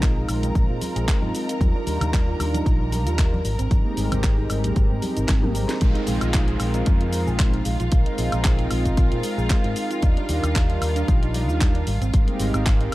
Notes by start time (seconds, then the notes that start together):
Already playing: A#1 G#3 C4 D#4 F4 A#4 A#5
0.02 G#3, kick, clap, closed hi-hat, cabasa
0.17 G#4
0.29 A#1 G#3, open hi-hat, cabasa, high woodblock
0.43 D#4, closed hi-hat, high conga, cabasa
0.55 A#1 G#3, kick, closed hi-hat, cabasa
0.70 A#2 F4
0.81 G#3, open hi-hat, high conga, cabasa
0.96 A#1 G#4, closed hi-hat, cabasa
1.08 G#3, kick, clap, closed hi-hat, cabasa
1.22 G#2 D#4, high conga
1.33 G#3 C4 D#4 F4 A#4, open hi-hat, cabasa
1.49 F4, closed hi-hat, cabasa
1.59 D#2 G3 D4 D#4 F4 A#4, kick, closed hi-hat, high conga, cabasa
1.75 D4
1.87 D#2 G3, open hi-hat, cabasa
2.01 D#2 D#4, closed hi-hat, high conga, low conga, cabasa, high woodblock
2.13 G3, kick, clap, closed hi-hat, cabasa
2.27 F4
2.39 D#2 G3, open hi-hat, cabasa, high woodblock
2.54 D4, closed hi-hat, high conga, cabasa
2.66 A#1 G3, kick, closed hi-hat, cabasa
2.80 D#4
2.92 G3, open hi-hat, high conga, cabasa
3.06 D#2 G3 D4 D#4 F4 A#4, closed hi-hat, cabasa
3.18 G3, kick, clap, closed hi-hat, cabasa
3.33 D4, high conga
3.45 G#1 G3, open hi-hat, cabasa
3.59 G#1 C4, closed hi-hat, cabasa
3.70 G#1 G3 G#3 C4 D#4 G4 A#4, kick, closed hi-hat, high conga, cabasa
3.85 A#3
3.97 G#1 G3, open hi-hat, cabasa
4.11 G#1 C4, closed hi-hat, high conga, low conga, cabasa, high woodblock
4.23 G3, kick, clap, closed hi-hat, cabasa
4.38 D#4
4.49 G#1 G3, open hi-hat, cabasa, high woodblock
4.64 A#3, closed hi-hat, high conga, cabasa
4.75 G#1 G3, kick, closed hi-hat, cabasa
4.90 G#2 C4
5.02 G3, open hi-hat, high conga, cabasa
5.16 G#1 G#3 C4 D#4 G4 A#4, closed hi-hat, cabasa
5.28 G#1 G3, kick, snare, clap, closed hi-hat, cabasa
5.43 A#3, high tom, high conga
5.54 G3, open hi-hat, cabasa
5.69 C4, snare, closed hi-hat, cabasa
5.80 A#1 G#3 C4 D#4 F4 A#4 F5, kick, closed hi-hat, downlifter, cabasa
5.95 D#4, closed hi-hat
6.07 A#1 G#3, open hi-hat, cabasa
6.21 A#1 F4, closed hi-hat, cabasa, high woodblock
6.33 G#3, kick, clap, closed hi-hat, cabasa
6.48 G#4, closed hi-hat
6.60 A#1 G#3, open hi-hat, cabasa, high woodblock
6.74 D#4, closed hi-hat, cabasa
6.86 F2 G#3, kick, closed hi-hat, cabasa
7.01 F4, closed hi-hat
7.12 G#3, open hi-hat, cabasa
7.27 A#1 G#3 C4 D#4 F4 G#4 A#4, cabasa
7.39 G#3, kick, clap, closed hi-hat, cabasa
7.53 D#4, closed hi-hat
7.65 A#1 G#3, open hi-hat, cabasa
7.80 A#1 F4, closed hi-hat, cabasa
7.90 A#1 G#3 C4 D#4 F4 A#4, kick, closed hi-hat, cabasa
8.06 D#4, closed hi-hat
8.18 A#1 G#3, open hi-hat, cabasa
8.32 A#1 F4, closed hi-hat, cabasa, high woodblock
8.44 G#3, kick, clap, closed hi-hat, cabasa
8.59 G#4, closed hi-hat
8.71 A#1 G#3, open hi-hat, cabasa, high woodblock
8.85 D#4, kick, closed hi-hat, cabasa
8.97 A#1 G#3, kick, closed hi-hat, cabasa
9.12 A#2 F4, closed hi-hat
9.23 G#3, open hi-hat, cabasa
9.38 A#1 G#4, cabasa
9.50 G#3, kick, clap, closed hi-hat, cabasa
9.64 G#2 D#4, closed hi-hat
9.75 G#3 C4 D#4 F4 A#4, open hi-hat, cabasa
9.90 F4, closed hi-hat, cabasa
10.01 D#2 G3 D4 D#4 F4 A#4, kick, closed hi-hat, cabasa
10.17 D4, closed hi-hat
10.29 D#2 G3, open hi-hat, cabasa
10.43 D#2 D#4, closed hi-hat, cabasa, high woodblock
10.55 G3, kick, clap, closed hi-hat, cabasa
10.69 F4, closed hi-hat
10.82 D#2 G3, open hi-hat, cabasa, high woodblock
10.96 D4, closed hi-hat, cabasa
11.08 A#1 G3, kick, closed hi-hat, cabasa
11.23 D#4, closed hi-hat
11.34 G3, open hi-hat, cabasa
11.48 D#2 G3 D4 D#4 F4 A#4, cabasa
11.61 G3, kick, clap, closed hi-hat, cabasa
11.75 D4, closed hi-hat
11.87 G#1 G3, open hi-hat, cabasa
12.01 G#1 C4, closed hi-hat, cabasa
12.12 G#1 G3 G#3 C4 D#4 G4 A#4, kick, closed hi-hat, cabasa
12.28 A#3, closed hi-hat
12.40 G#1 G3, open hi-hat, cabasa
12.54 G#1 C4, closed hi-hat, cabasa, high woodblock
12.66 G3, kick, clap, closed hi-hat, cabasa
12.80 D#4, closed hi-hat